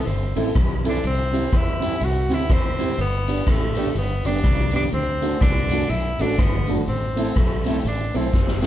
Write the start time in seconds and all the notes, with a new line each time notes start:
0.06 G1 C4, closed hi-hat
0.35 A1 C4 E4 A4, closed hi-hat, tambourine
0.55 B1, kick, cross-stick, closed hi-hat
0.84 C4 E4 A4, closed hi-hat, tambourine
0.89 D4
1.04 C2 C4, closed hi-hat
1.32 C4 E4 G4, closed hi-hat, tambourine
1.52 E2, kick, cross-stick, closed hi-hat
1.57 E4
1.80 C4 E4 G4, closed hi-hat, tambourine
2.01 C2 F#4, closed hi-hat
2.29 D2 C4 E4 G4, closed hi-hat, tambourine
2.34 E4
2.49 E2 C4, kick, cross-stick, closed hi-hat
2.78 C4 E4 G4, closed hi-hat, tambourine
2.98 G1 B3, closed hi-hat
3.28 B3 D4 G4, closed hi-hat, tambourine
3.47 A1 A3, kick, cross-stick, closed hi-hat
3.75 B3 D4 G4, closed hi-hat, tambourine
3.95 G1 B3, closed hi-hat
4.24 F#1 B3 D4 G4, closed hi-hat, tambourine
4.44 C2, kick, cross-stick, closed hi-hat
4.71 B3 D4 G4, closed hi-hat, tambourine
4.76 D4
4.92 D2 C4, closed hi-hat
5.22 A3 D4 F#4 A4, closed hi-hat, tambourine
5.41 C2 D4, kick, cross-stick, closed hi-hat
5.69 A3 D4 F#4 A4, closed hi-hat, tambourine
5.90 B1 E4, closed hi-hat
6.19 A1 A3 D4 F#4 A4, closed hi-hat, tambourine
6.38 G1 B3, kick, cross-stick, closed hi-hat
6.67 A3 D4 F#4 A4, open hi-hat, tambourine
6.87 A1 C4, closed hi-hat
7.16 A3 C4 E4 A4, closed hi-hat, tambourine
7.36 B1 A3, kick, cross-stick, closed hi-hat
7.64 A3 C4 E4 A4, closed hi-hat, tambourine
7.85 A1 D4, closed hi-hat
8.13 B1 A3 C4 E4 A4, closed hi-hat, tambourine
8.33 F#1, kick, snare
8.48 snare
8.62 A3 C4 E4, snare, tambourine